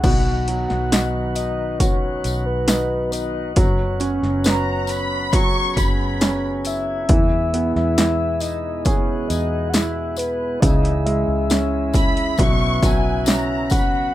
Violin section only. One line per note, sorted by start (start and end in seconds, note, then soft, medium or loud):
4.46 4.86 A#5 medium
4.90 5.33 B5 loud
5.33 5.77 C#6 loud
5.77 6.43 B5 medium
11.95 12.36 B5 medium
12.39 12.83 C#6 loud
12.85 13.28 G#5 medium
13.28 13.72 A#5 medium
13.71 14.14 B5 medium